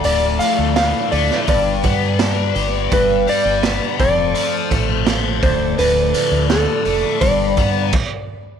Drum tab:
CC |----------------|----------------|------------x---|
HH |o-o-o-o-o-o-o-o-|o-o-o-o-o-o-o-o-|o-o-o-o-o-o-----|
SD |----o--o----o---|----o-------o---|----o-----------|
BD |--------o-o-----|o-----o---o---o-|--------o-o-o---|